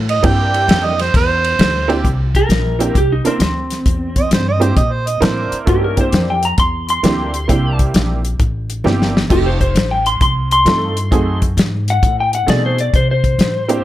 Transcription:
Already playing: A2
0.09 D#5, ride
0.23 G2 A#3 C4 D4 E4 G4 G5, kick, ride
0.54 ride
0.68 F2, snare, ride
0.85 D#5
0.99 C5, snare, ride
1.14 E2 C5, kick, snare, ride
1.44 ride
1.59 D2, snare, ride
1.88 A#3 C4 D4 E4 G4, ride
2.05 C2, kick, closed hi-hat
2.35 A#4, kick, closed hi-hat
2.49 A#1, snare, closed hi-hat
2.79 A#3 C4 D4 E4 G4, closed hi-hat
2.95 C2 G4, kick, closed hi-hat
3.12 D#4
3.25 A#3 C4 D4 E4 A#4, muted upright bass stroke, closed hi-hat
3.40 D2 C4, snare, closed hi-hat
3.71 snare, closed hi-hat
3.86 E2, kick, closed hi-hat
4.16 D#5, kick, closed hi-hat
4.31 G2 C5, snare, closed hi-hat
4.48 D#5
4.60 A#3 C4 D4 E4 G4 C5, closed hi-hat
4.77 A#2 D#5, kick, closed hi-hat
4.93 C5
5.07 D#5, closed hi-hat
5.21 A2 A#3 C4 D4 E4 A#4 C5, snare, closed hi-hat
5.52 muted upright bass stroke, closed hi-hat
5.65 G2 A3 B3 C#4 D#4 F#4 G4, kick, closed hi-hat
5.84 A#4
5.96 A#3 C4 D4 E4 G4, kick, closed hi-hat
6.01 C5
6.12 F2, snare, closed hi-hat
6.30 G5
6.43 A#5, closed hi-hat
6.58 E2 C6, kick, closed hi-hat
6.89 C6, closed hi-hat
7.03 D2 A#3 C4 D4 E4 G4, snare, closed hi-hat
7.34 closed hi-hat
7.48 C2 A#3 C4 D4 E4 G4, kick, closed hi-hat
7.79 kick, closed hi-hat
7.94 A#1, snare, closed hi-hat
8.25 closed hi-hat
8.39 A1, kick, closed hi-hat
8.70 closed hi-hat
8.84 G1 A#3 C4 D4 E4 G4, snare
9.02 snare
9.17 snare
9.29 F1 A3 C4 D#4 F4 G4, kick, closed hi-hat, crash
9.46 C5
9.61 C5, kick, closed hi-hat
9.75 A1, snare, closed hi-hat
9.91 G5
10.06 C6, closed hi-hat
10.21 C2 C6, kick, closed hi-hat
10.51 C6, closed hi-hat
10.65 G2 A3 C4 D#4 F4 A4, snare, closed hi-hat
10.97 closed hi-hat
11.11 F#2 A3 C4 D#4 F#4 G#4, kick, closed hi-hat
11.42 kick, closed hi-hat
11.57 G#2, snare, closed hi-hat
11.88 F#5, closed hi-hat
12.03 A2, kick, closed hi-hat
12.20 G5
12.33 F#5, closed hi-hat
12.46 B2 A3 C4 D#4 F#4 G#4 D5, snare, closed hi-hat
12.66 C5
12.78 D5, closed hi-hat
12.94 C3 C5, kick, closed hi-hat
13.11 C5
13.24 kick, closed hi-hat
13.38 A2, snare, closed hi-hat
13.68 A#3 C4 D4 E4 G4, closed hi-hat

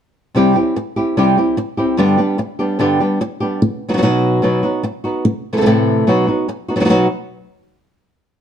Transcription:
0.35 C3 G3 C4 E4 G4
0.55 C4 E4 G4
0.76 muted nylon-string guitar stroke
0.96 C4 E4 G4
1.17 C3 G3 C4 E4 G4
1.37 C4 E4 G4
1.57 muted nylon-string guitar stroke
1.77 C4 E4 G4
1.97 G2 D3 G3 B3 D4 G4
2.18 G3 B3 D4 G4
2.38 muted nylon-string guitar stroke
2.59 G3 B3 D4 G4
2.79 G2 D3 G3 B3 D4 G4
3.00 G3 B3 D4 G4
3.21 muted nylon-string guitar stroke
3.40 G3 B3 D4 G4
3.62 muted nylon-string guitar stroke
3.89 F#3 B3 D#4 F#4
3.93 F#3 B3 D#4 F#4
3.97 F#3 B3 D#4 F#4
4.02 B2 F#3 B3 D#4 F#4
4.42 B2 F#3 B3 D#4 F#4
4.63 B3 D#4 F#4
4.83 muted nylon-string guitar stroke
5.04 B3 D#4 F#4
5.25 muted nylon-string guitar stroke
5.53 C3 E3 A3 E4 A4
5.57 C3 E3 A3 E4 A4
5.61 C3 E3 A3 E4 A4
5.66 A2 C3 E3 A3 E4 A4
6.07 B2 F#3 B3 D#4 F#4
6.27 B3 D#4 F#4
6.48 muted nylon-string guitar stroke
6.68 B3 D#4 F#4
6.76 F#3 B3 D#4 F#4
6.80 F#3 B3 D#4 F#4
6.85 F#3 B3 D#4 F#4
6.89 B2 F#3 B3 D#4 F#4

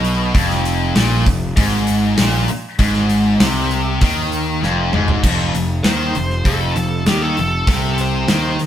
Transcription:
Already playing: B1 B2
0.04 open hi-hat
0.34 F1 F2, kick, open hi-hat
0.50 snare
0.65 open hi-hat
0.95 A#1 A#2, snare, open hi-hat
1.26 F1 F2, kick, open hi-hat
1.57 G#1 G#2, kick, open hi-hat
1.87 open hi-hat
2.18 A#1 A#2, snare, open hi-hat
2.48 muted picked electric bass stroke, muted distorted electric guitar stroke, muted overdriven electric guitar stroke, open hi-hat
2.79 G#1 G#2, kick, open hi-hat
2.94 snare
3.09 open hi-hat
3.40 C2 C3, snare, open hi-hat
3.71 open hi-hat
4.01 D#2 D#3, kick, open hi-hat
4.32 open hi-hat
4.63 F1 F2, snare
4.93 G#1 G#2, mid tom
5.08 floor tom
5.24 F1 F2, kick, crash
5.54 F1 F2, open hi-hat
5.84 D#2 D#3 C5, snare, open hi-hat
6.15 F1 F2, open hi-hat
6.30 snare
6.45 F1 F2 A4, kick, open hi-hat
6.76 F1 F2, open hi-hat
7.06 D#2 D#3 G4, snare, open hi-hat
7.22 A4
7.37 F1 F2, open hi-hat
7.67 C2 C3 A4, kick, open hi-hat
7.98 C5, open hi-hat
8.28 D#2 D#3, snare, open hi-hat
8.59 snare, open hi-hat

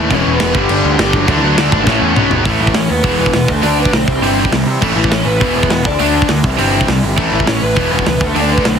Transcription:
Already playing: E3 A3 C#4 E4
0.00 A2
0.09 E1 E2 B2 E3 G#3 B3 C#4 E4 C#5, kick, crash
0.13 E3
0.26 E1
0.34 B3 B4
0.40 E1, snare, crash
0.53 G1 G2 D3 G3 B3 G4, kick
0.57 D4
0.69 G1, crash
0.85 D2
0.93 G3 G4
0.98 G1 G2 D3, snare, crash
1.02 G3
1.13 G1 F#3 F#4, kick
1.27 D2 D3 F#3 A3 D4, kick, crash
1.31 E3 D4
1.36 E4
1.42 D2 F#3 F#4
1.57 D2 D4 D5, snare, crash
1.71 G#1 A3 D4, kick
1.75 D3
1.85 A1 A2 E3 A3 C#4 E4 C#5, kick, snare
1.89 A3
2.02 E2
2.15 B1 B2 D#3 F#3 B3 D#4, mid tom
2.19 B3
2.31 G#1, floor tom
2.44 A1 A2 E3 A3 C#4 E4, kick, open hi-hat
2.60 A1 E3 E4
2.67 kick
2.74 A1 A2 E3 C#4 C#5, snare, open hi-hat
2.89 D#2 B3 B4
3.02 E1 E2 B2 E3 G#3 B3 E4, kick
3.19 E1 B3 B4
3.26 kick
3.33 E1 E2 B2 B3 B4, snare, open hi-hat
3.46 D2 D3 A3 D4 F#4 A4, kick
3.50 A3
3.62 D2 D3 A3 D4 D5, open hi-hat
3.79 B3 B4
3.85 kick
3.92 B1 D3 A3 C4 C5, snare, open hi-hat
4.06 C2 C3 E3 G3 C4 E4, kick
4.21 G1 C3 G3 C4, open hi-hat
4.45 kick
4.51 C2 C3 G3, snare, open hi-hat
4.66 C3 E3 G3 C4 E4
4.80 A1 A2 E3 A3 C#4 E4, kick, crash
4.96 A1 E3 E4
5.04 kick
5.10 A1 A2 E3 C#4 C#5, snare, open hi-hat
5.25 A1 B3 B4
5.40 E1 E2 B2 E3 G#3 B3 E4, kick
5.54 E1 B3 B4
5.63 kick
5.70 E1 E2 B2 B3 B4, snare, open hi-hat
5.83 D2 D3 A3 D4 F#4 D5, kick
5.99 D2 D3 A3 D4, open hi-hat
6.22 kick
6.29 D2 D3 A3, snare, open hi-hat
6.42 C2 C3 E3 G3 C4 E4, kick
6.58 G1 C3 G3 C4, open hi-hat
6.81 kick
6.88 C2 C3 G3, snare, open hi-hat
7.02 G1 C3 E3 G3 C4 E4
7.16 A1 A2 E3 A3 C#4 E4, kick, crash
7.32 A1 E3 E4
7.40 kick
7.46 A1 A2 E3 C#4 C#5, snare, open hi-hat
7.62 A1 B3 B4
7.75 E1 E2 B2 E3 G#3 B3 E4, kick
7.92 E1 B3 B4
7.99 kick
8.06 C#2 E2 B2 B3 B4, snare, open hi-hat
8.19 D2 D3 A3 D4 F#4, kick
8.25 A3 A4
8.35 D2 D3 A3 D4, open hi-hat
8.40 D4 D5
8.51 B3 B4
8.58 kick
8.65 B1 D3 A3 C4 C5, snare, open hi-hat

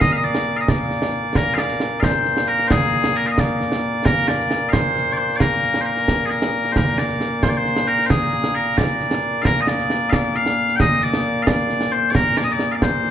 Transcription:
Already playing: A#2 A#3
0.01 D#5, concert bass drum, snare
0.12 F5
0.17 D#5
0.23 D5
0.35 snare
0.57 F5
0.61 D#5
0.68 D5, concert bass drum, snare
0.91 snare
1.02 snare
1.35 A#4, concert bass drum, snare
1.54 F5, snare
1.58 D5
1.69 snare
1.80 snare
2.00 C5 F5, concert bass drum, snare
2.26 snare
2.37 snare
2.48 A#4
2.59 snare
2.68 G#4 C5, concert bass drum, snare
3.04 snare
3.16 A#4
3.27 F5
3.31 D#5
3.38 D5, concert bass drum, snare
3.60 snare
3.72 snare
4.05 A#4, concert bass drum, snare
4.17 snare
4.28 D5, snare
4.40 snare
4.51 snare
4.69 C5 F5
4.73 concert bass drum, snare
4.96 snare
5.13 D5
5.17 C5
5.29 snare
5.36 D5
5.40 A#4, concert bass drum, snare
5.63 snare
5.74 snare
5.81 C5
5.85 A#4
5.97 snare
6.08 concert bass drum, snare
6.25 G#4
6.30 A#4, snare
6.42 snare
6.65 snare
6.72 C5, concert bass drum, snare
6.76 A#4
6.87 snare
6.98 D5, snare
7.09 snare
7.21 snare
7.43 C5, concert bass drum, snare
7.49 D5
7.57 C5
7.65 snare
7.76 snare
7.87 A#4
7.99 snare
8.06 G#4 C5
8.10 concert bass drum, snare
8.44 snare
8.55 A#4
8.78 D5, concert bass drum, snare
9.00 snare
9.11 snare
9.42 A#4 F5, concert bass drum, snare
9.56 snare
9.61 D#5
9.67 D5, snare
9.79 snare
9.90 snare
10.10 D5 F5, concert bass drum, snare
10.35 F5, snare
10.46 snare
10.69 snare
10.76 G5, concert bass drum, snare
10.80 D#5
11.03 D5
11.14 snare
11.43 F5
11.47 D5, concert bass drum, snare
11.70 snare
11.81 snare
11.92 C5
12.11 D5
12.15 A#4, concert bass drum, snare
12.26 snare
12.37 D5, snare
12.44 D#5
12.48 D5, snare
12.59 snare
12.72 D5 F5
12.82 C5, concert bass drum, snare
13.05 snare

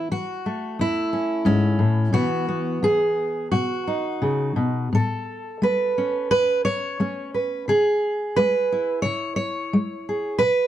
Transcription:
Already playing: E3 E4
0.11 E3 F#4
0.46 A3
0.79 E2 E4
1.13 C#4
1.45 G#2 C#4
1.79 A2
2.13 B2 E3 B3 F#4
2.48 B3
2.83 E3 G#4
3.52 B2 F#4
3.87 D#4
4.22 C#3
4.56 B2
4.93 A2 A4
5.62 A3 B4
5.98 C#4
6.31 E2 B4
6.65 C#5
7.00 A3 C#4
7.34 B4
7.68 C#3 G#4
8.36 G#3 B4
8.72 E4
9.02 C#3 C#5
9.36 C#5
9.73 G#3
10.09 G#4
10.38 B2 B4

